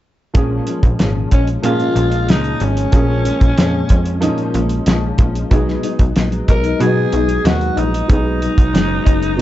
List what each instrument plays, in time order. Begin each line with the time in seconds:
0.34 analog synth bass A#1, nylon-string guitar A#2 F3 G#3 C#4, upright piano F3 A#3 C#4 G#4, kick, closed hi-hat
0.67 nylon-string guitar F3 G#3 C#4, closed hi-hat
0.83 analog synth bass A#1, kick, closed hi-hat
0.99 analog synth bass G#1, nylon-string guitar A#2 F3 G#3 C#4, snare, closed hi-hat
1.31 analog synth bass A#1, nylon-string guitar F3 G#3 C#4, alto saxophone C#4, kick, closed hi-hat
1.47 closed hi-hat
1.62 nylon-string guitar A#2 F3 G#3 C#4, analog synth bass A#2, upright piano F3 A#3 C#4 G#4, alto saxophone F4, closed hi-hat
1.80 closed hi-hat
1.95 analog synth bass A#1, nylon-string guitar F3 G#3 C#4, closed hi-hat
2.12 closed hi-hat
2.28 analog synth bass C#2, nylon-string guitar A#2 F3 G#3 C#4, alto saxophone D#4, snare, closed hi-hat
2.44 closed hi-hat
2.60 analog synth bass G#1, nylon-string guitar F3 G#3 C#4, alto saxophone C#4, closed hi-hat
2.77 closed hi-hat
2.92 analog synth bass A#1, nylon-string guitar A#2 F3 G#3 C#4, upright piano F3 A#3 C#4 G#4, kick, closed hi-hat
3.24 nylon-string guitar F3 G#3 C#4, closed hi-hat
3.41 analog synth bass A#1, kick, closed hi-hat
3.56 analog synth bass F2, nylon-string guitar A#2 F3 G#3 C#4, snare, closed hi-hat
3.89 analog synth bass F2, nylon-string guitar F3 G#3 C#4, kick, closed hi-hat
4.06 closed hi-hat
4.20 nylon-string guitar A#2 F3 G#3 C#4, upright piano F3 A#3 C#4 D#4, closed hi-hat
4.38 closed hi-hat
4.54 analog synth bass A#1, nylon-string guitar F3 G#3 C#4, closed hi-hat
4.69 closed hi-hat
4.86 analog synth bass A#1, nylon-string guitar A#2 F3 G#3 C#4, snare, closed hi-hat
5.18 analog synth bass A#1, nylon-string guitar F3 G#3 C#4, kick, closed hi-hat
5.35 closed hi-hat
5.50 analog synth bass B1, nylon-string guitar B2 F#3 G#3 D#4, upright piano F#3 B3 D#4 G#4, kick, closed hi-hat
5.68 snare
5.83 nylon-string guitar F#3 G#3 D#4, closed hi-hat
5.99 analog synth bass B1, kick, closed hi-hat
6.16 analog synth bass A#1, nylon-string guitar F#3 G#3 D#4, snare, closed hi-hat
6.32 closed hi-hat
6.48 analog synth bass B1, nylon-string guitar F#3 G#3 D#4, alto saxophone A#4, kick, closed hi-hat
6.64 closed hi-hat
6.79 nylon-string guitar B2 F#3 G#3 D#4, analog synth bass B2, upright piano F#3 B3 D#4 F#4, alto saxophone G#4, closed hi-hat
7.12 analog synth bass B1, nylon-string guitar F#3 G#3 D#4, closed hi-hat
7.29 closed hi-hat
7.44 analog synth bass D#2, nylon-string guitar B2 F#3 G#3 D#4, alto saxophone F#4, snare, closed hi-hat
7.61 closed hi-hat
7.75 analog synth bass A#1, nylon-string guitar F#3 G#3 D#4, closed hi-hat
7.79 alto saxophone D#4
7.94 closed hi-hat
8.08 analog synth bass B1, nylon-string guitar B2 F#3 G#3 D#4, upright piano F#3 B3 D#4 G#4, kick, closed hi-hat
8.13 alto saxophone D#4
8.41 nylon-string guitar F#3 G#3 D#4, closed hi-hat
8.58 analog synth bass B1, kick, closed hi-hat
8.74 analog synth bass F#1, nylon-string guitar B2 F#3 G#3 D#4, snare, closed hi-hat
9.05 analog synth bass F#1, nylon-string guitar F#3 G#3 D#4, kick, closed hi-hat
9.23 closed hi-hat
9.37 nylon-string guitar B2 F#3 G#3, upright piano F#3 B3 D#4